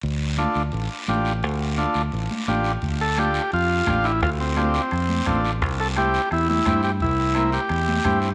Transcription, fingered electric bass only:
X:1
M:4/4
L:1/8
Q:1/4=172
K:Dm
V:1 name="Fingered electric bass" clef=bass
D,,3 D,, A,,, z A,,,2 | D,,3 D,, A,,, z A,,,2 | D,,4 F,,2 A,,,2 | D,,4 F,,2 A,,,2 |
C,,4 E,,2 G,,2 | C,,4 E,,2 G,,2 |]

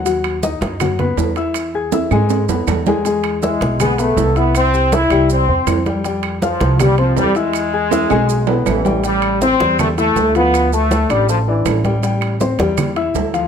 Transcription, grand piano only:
X:1
M:4/4
L:1/8
Q:1/4=160
K:Am
V:1 name="Grand piano"
[^F,^F^f]2 [^D^d^d']2 [F,Ff] [B,Bb]2 [Eee']- | [Eee'] [^G^g^g'] [Eee'] [^G,Gg]2 [B,Bb]2 [G,Gg] | [^G,^G^g]2 [Eee']2 [G,Gg] [B,Bb]2 [Eee']- | [Eee'] [Ggg'] [Eee'] [G,Gg]2 [Ccc']2 [G,Gg] |
[G,Gg]2 [Fff']2 [G,Gg] [Ccc']2 [Eee']- | [Eee'] [^G^g^g'] [Eee'] [^G,Gg]2 [B,Bb]2 [=G,=G=g] | [G,Gg]2 [Ccc'] [G,Gg]2 [Eee']2 [F,Ff]- | [F,Ff] [A,Aa]2 [Ddd'] [A,Aa] [Ddd']2 [G,Gg] |
[G,Gg]2 [Ccc'] [G,Gg]2 [Eee']2 [F,Ff] |]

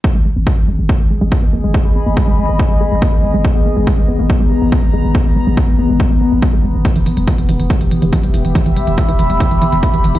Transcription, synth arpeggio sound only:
X:1
M:4/4
L:1/16
Q:1/4=141
K:G#m
V:1 name="Synth arpeggio sound" clef=bass
G, G, G, B, A, G, G, G, B, A, G, G, G, B, A, G, | G, G, B, A, G, G, G, B, A, G, G, G, B, A, G, G, | G, B, A, G, G, G, B, A, G, G, G, B, A, G, G, G, | B, A, G, G, G, B, A, G, G, G, B, A, G, G, G, B, |
E, E, E, =G, E, E, E, E, G, E, E, E, E, G, E, E, | E, E, =G, E, E, E, E, G, E, E, E, E, G, E, E, E, |]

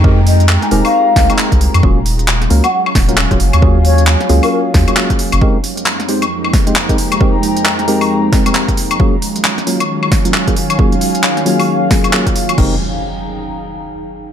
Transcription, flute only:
X:1
M:4/4
L:1/16
Q:"Swing 16ths" 1/4=134
K:Fphr
V:1 name="Flute"
z2 e2 z a a f4 z4 z | z6 z g g z6 z | z2 d2 z3 B B z6 z | z16 |
z16 | z16 | z16 | z16 |]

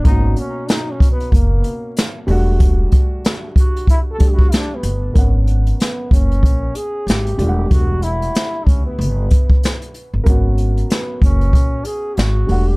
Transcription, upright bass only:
X:1
M:4/4
L:1/16
Q:"Swing 16ths" 1/4=94
K:Elyd
V:1 name="Upright bass" clef=bass
G,,,2 z6 F,,,2 z4 E,,,2- | E,,,2 z12 =G,,,2 | G,,,4 z2 F,,,2 A,,,2 z2 G,,,2 E,,,2 | E,,,4 z2 =D,,2 =G,,,2 z4 z G,,, |
G,,,4 z2 F,,,2 A,,,2 z2 G,,,2 E,,,2 |]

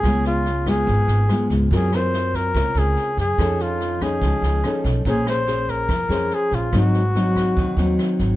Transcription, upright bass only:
X:1
M:4/4
L:1/16
Q:1/4=143
K:Bbm
V:1 name="Upright bass" clef=bass
D,,8 A,,, z A,,,2 z2 D,,2 | G,,8 D,, z D,,2 z2 G,,2 | F,,8 ^C,, z C,,2 z2 _C,,2 | B,,,8 F,, z F,,2 z2 B,,,2 |
A,,,8 E,, z E,,2 z2 A,,,2 |]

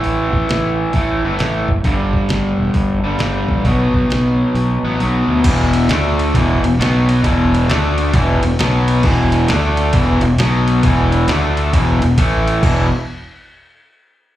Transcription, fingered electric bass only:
X:1
M:4/4
L:1/8
Q:"Swing" 1/4=134
K:Em
V:1 name="Fingered electric bass" clef=bass
A,,, A,,, A,,,2 A,,, G,,, A,,, F,,, | G,,,2 G,,, E,,, G,,, G,,, G,,, A,,, | B,,, B,,, B,,,2 B,,, A,,, B,,, D,, | E,,,2 D,,2 E,,, E,,, B,,,2 |
E,,,2 D,,2 E,,, E,,, B,,,2 | E,,,2 D,,2 E,,, E,,, B,,,2 | E,,,2 D,,2 E,,, E,,, A,,,2 | E,,, z6 z |]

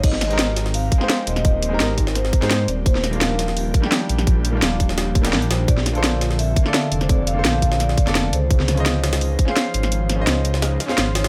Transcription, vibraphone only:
X:1
M:4/4
L:1/16
Q:1/4=170
K:Ab
V:1 name="Vibraphone"
e6 z2 f6 e2- | e4 B4 c6 =d2 | c2 B12 z2 | z12 z2 c2 |
=d8 _f6 d c | =d2 f6 d6 c2- | c16- | c12 z2 d2 |]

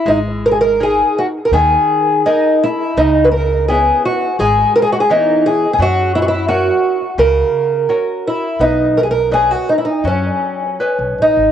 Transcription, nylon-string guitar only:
X:1
M:4/4
L:1/8
Q:1/4=84
K:G#m
V:1 name="Nylon-string guitar"
G,2 [DGA]2 D,2 [GAd]2 | C,2 [B,CE]2 G,2 [E,B,C]2 | F,2 [CFA]2 C,2 [CFA]2 | B,2 [Bcd]2 F,2 [Bcd]2 |]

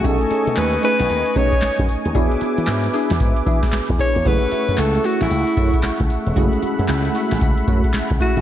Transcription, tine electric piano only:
X:1
M:4/4
L:1/8
Q:"Swing 16ths" 1/4=114
K:F#m
V:1 name="Tine electric piano"
[A,C^D=G^g]8 | [B,DFG]8 | [A,CEG]8 | [G,A,CEG]8 |]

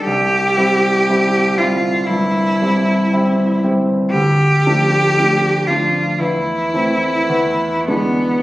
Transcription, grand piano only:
X:1
M:4/4
L:1/8
Q:1/4=58
K:C
V:1 name="Grand piano"
C,, [G,CE] [G,CE] [G,CE] G,, [G,CE] [G,CE] [G,CE] | D,, [F,A,D] [F,A,D] [F,A,D] E,, [E,A,C] E,, [E,^G,D] |]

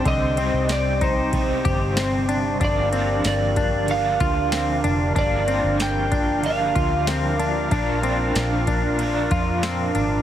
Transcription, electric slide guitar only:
X:1
M:4/4
L:1/8
Q:1/4=94
K:Gphr
V:1 name="Electric slide guitar"
e2 d c4 z | d2 d2 f3 z | d2 g2 f2 z2 | z8 |]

